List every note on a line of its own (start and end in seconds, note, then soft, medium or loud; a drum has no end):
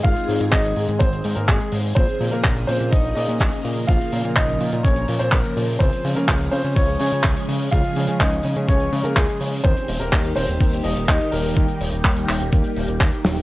0.00 1.92 D#3 medium
0.00 1.93 G#3 medium
0.00 1.93 C4 medium
0.00 3.84 G#4 loud
0.00 0.53 F5 loud
0.04 0.15 G#1 loud
0.04 0.50 F4 medium
0.04 kick loud
0.04 closed hi-hat medium
0.17 closed hi-hat medium
0.29 0.39 G#2 medium
0.29 open hi-hat loud
0.41 0.51 G#2 medium
0.41 closed hi-hat medium
0.51 0.73 G#1 medium
0.51 0.98 D#4 medium
0.51 1.01 D#5 medium
0.51 kick loud
0.51 clap loud
0.51 closed hi-hat loud
0.65 closed hi-hat medium
0.76 0.87 G#2 medium
0.76 open hi-hat medium
0.88 0.99 G#2 medium
0.88 closed hi-hat medium
0.99 1.21 G#1 medium
0.99 1.35 C4 medium
0.99 1.37 C5 loud
0.99 kick loud
0.99 closed hi-hat loud
1.13 closed hi-hat medium
1.24 1.35 G#2 loud
1.24 open hi-hat loud
1.35 1.47 G#2 medium
1.35 1.48 A#3 medium
1.35 1.48 A#4 medium
1.35 closed hi-hat medium
1.47 1.59 G#1 medium
1.47 1.82 G#3 medium
1.47 1.81 G#4 medium
1.47 kick loud
1.47 clap loud
1.47 closed hi-hat loud
1.60 closed hi-hat medium
1.72 1.93 G#2 medium
1.72 open hi-hat loud
1.95 2.07 A#1 loud
1.95 5.77 C#3 medium
1.95 9.61 F3 medium
1.95 5.77 A#3 medium
1.95 2.30 C4 medium
1.95 2.33 C5 loud
1.95 kick loud
1.95 closed hi-hat medium
2.09 closed hi-hat soft
2.21 2.31 A#2 medium
2.21 open hi-hat loud
2.31 2.43 A#2 medium
2.31 2.66 A#3 medium
2.31 2.69 A#4 medium
2.31 closed hi-hat medium
2.44 2.65 A#1 medium
2.44 kick loud
2.44 clap loud
2.44 closed hi-hat loud
2.57 closed hi-hat medium
2.67 2.79 A#2 medium
2.67 2.91 C4 medium
2.67 2.90 C5 medium
2.67 open hi-hat loud
2.81 2.91 A#2 medium
2.81 closed hi-hat medium
2.91 3.13 A#1 medium
2.91 3.15 D#4 medium
2.91 3.14 D#5 loud
2.91 kick loud
2.91 closed hi-hat loud
3.05 closed hi-hat medium
3.15 3.27 A#2 loud
3.15 3.85 D#4 medium
3.15 3.90 D#5 loud
3.15 open hi-hat loud
3.28 3.39 A#2 medium
3.28 closed hi-hat medium
3.40 3.51 A#1 loud
3.40 kick loud
3.40 clap loud
3.40 closed hi-hat medium
3.53 closed hi-hat soft
3.65 3.85 A#2 medium
3.65 open hi-hat loud
3.87 3.99 A#1 loud
3.87 4.34 F4 medium
3.87 5.79 A#4 loud
3.87 4.37 F5 loud
3.87 kick loud
3.87 closed hi-hat medium
4.01 closed hi-hat medium
4.12 4.23 A#2 medium
4.12 open hi-hat loud
4.24 4.35 A#2 medium
4.24 closed hi-hat medium
4.35 4.57 A#1 medium
4.35 4.82 D#4 medium
4.35 4.85 D#5 medium
4.35 kick loud
4.35 clap loud
4.35 closed hi-hat loud
4.49 closed hi-hat medium
4.60 4.71 A#2 medium
4.60 open hi-hat loud
4.72 4.83 A#2 medium
4.72 closed hi-hat medium
4.83 5.05 A#1 medium
4.83 5.19 C#4 medium
4.83 5.21 C#5 medium
4.83 kick loud
4.83 closed hi-hat loud
4.96 closed hi-hat medium
5.08 5.19 A#2 loud
5.08 open hi-hat loud
5.19 5.31 A#2 medium
5.19 5.32 C4 medium
5.19 5.32 C5 medium
5.19 closed hi-hat medium
5.31 5.43 A#1 loud
5.31 5.66 A#3 medium
5.31 5.65 A#4 medium
5.31 kick loud
5.31 clap loud
5.31 closed hi-hat medium
5.45 closed hi-hat medium
5.57 5.77 A#2 medium
5.57 open hi-hat loud
5.68 open hi-hat medium
5.79 5.91 C#2 loud
5.79 9.61 C#3 medium
5.79 9.61 G#3 medium
5.79 6.14 C4 medium
5.79 9.61 G#4 loud
5.79 6.13 C5 loud
5.79 kick loud
5.79 closed hi-hat medium
5.93 closed hi-hat medium
6.05 6.15 C#3 medium
6.05 open hi-hat loud
6.15 6.27 C#3 medium
6.15 6.51 A#3 medium
6.15 6.53 A#4 medium
6.15 closed hi-hat medium
6.29 6.49 C#2 medium
6.29 kick loud
6.29 clap loud
6.29 closed hi-hat loud
6.41 closed hi-hat medium
6.52 6.63 C#3 medium
6.52 6.75 C4 medium
6.52 6.74 C5 medium
6.52 open hi-hat loud
6.64 6.75 C#3 medium
6.64 closed hi-hat medium
6.75 6.97 C#2 medium
6.75 6.99 C#4 medium
6.75 6.98 C#5 loud
6.75 kick loud
6.75 closed hi-hat medium
6.88 closed hi-hat medium
6.99 7.11 C#3 loud
6.99 7.69 C#4 medium
6.99 7.74 C#5 loud
6.99 open hi-hat loud
7.13 7.23 C#3 medium
7.13 closed hi-hat medium
7.24 7.35 C#2 loud
7.24 kick loud
7.24 clap loud
7.24 closed hi-hat medium
7.37 closed hi-hat medium
7.48 7.69 C#3 medium
7.48 open hi-hat loud
7.71 7.83 C#2 loud
7.71 8.18 F4 medium
7.71 8.21 F5 loud
7.71 kick loud
7.71 closed hi-hat medium
7.84 closed hi-hat medium
7.96 8.07 C#3 medium
7.96 open hi-hat loud
8.08 8.19 C#3 medium
8.08 closed hi-hat medium
8.19 8.41 C#2 medium
8.19 8.66 D#4 medium
8.19 8.69 D#5 medium
8.19 kick loud
8.19 clap loud
8.19 closed hi-hat loud
8.33 closed hi-hat medium
8.43 8.55 C#3 medium
8.43 open hi-hat medium
8.56 8.67 C#3 medium
8.56 closed hi-hat medium
8.67 8.89 C#2 medium
8.67 9.03 C#4 medium
8.67 9.05 C#5 medium
8.67 kick loud
8.67 closed hi-hat loud
8.80 closed hi-hat medium
8.92 9.03 C#3 loud
8.92 open hi-hat loud
9.03 9.15 C#3 medium
9.03 9.16 A#3 medium
9.03 9.16 A#4 medium
9.03 closed hi-hat medium
9.15 9.27 C#2 loud
9.15 9.51 G#3 medium
9.15 9.49 G#4 medium
9.15 kick loud
9.15 clap loud
9.15 closed hi-hat loud
9.29 closed hi-hat medium
9.41 9.61 C#3 medium
9.41 open hi-hat loud
9.64 9.75 D#2 loud
9.64 13.42 D#3 medium
9.64 13.42 G3 medium
9.64 13.42 A#3 medium
9.64 9.99 C4 medium
9.64 13.42 G4 loud
9.64 10.01 C5 loud
9.64 kick loud
9.64 closed hi-hat medium
9.77 closed hi-hat medium
9.88 9.99 D#1 medium
9.88 open hi-hat loud
10.00 10.11 D#1 medium
10.00 10.35 A#3 medium
10.00 10.37 A#4 loud
10.00 closed hi-hat medium
10.13 10.33 D#2 medium
10.13 kick loud
10.13 clap loud
10.13 closed hi-hat loud
10.25 closed hi-hat medium
10.36 10.47 D#1 medium
10.36 10.82 C4 medium
10.36 10.86 C5 loud
10.36 open hi-hat loud
10.48 10.59 D#1 medium
10.48 closed hi-hat medium
10.61 10.81 D#2 medium
10.61 kick loud
10.61 closed hi-hat loud
10.73 closed hi-hat medium
10.84 10.95 D#1 loud
10.84 11.07 D#4 medium
10.84 11.06 D#5 medium
10.84 open hi-hat loud
10.97 11.07 D#1 medium
10.97 closed hi-hat medium
11.08 11.19 D#2 loud
11.08 11.31 D#4 medium
11.08 11.33 D#5 loud
11.08 kick loud
11.08 clap loud
11.08 closed hi-hat medium
11.21 closed hi-hat medium
11.32 11.53 D#1 medium
11.32 12.97 A#3 medium
11.32 12.96 A#4 medium
11.32 open hi-hat loud
11.57 11.67 D#2 loud
11.57 kick loud
11.57 closed hi-hat medium
11.68 closed hi-hat medium
11.81 11.91 D#1 medium
11.81 open hi-hat loud
11.92 12.03 D#1 medium
11.92 closed hi-hat medium
12.04 12.25 D#2 medium
12.04 kick loud
12.04 clap loud
12.04 closed hi-hat loud
12.17 closed hi-hat medium
12.28 12.39 D#1 medium
12.28 clap medium
12.28 open hi-hat loud
12.41 12.51 D#1 medium
12.41 closed hi-hat medium
12.52 12.63 D#2 medium
12.52 kick loud
12.52 closed hi-hat loud
12.64 closed hi-hat medium
12.77 12.87 D#1 loud
12.77 open hi-hat loud
12.88 12.99 D#1 medium
12.88 closed hi-hat medium
13.01 13.11 D#2 medium
13.01 kick loud
13.01 clap loud
13.01 closed hi-hat medium
13.12 closed hi-hat medium
13.24 13.42 D#1 medium
13.24 snare medium
13.24 open hi-hat loud
13.36 open hi-hat medium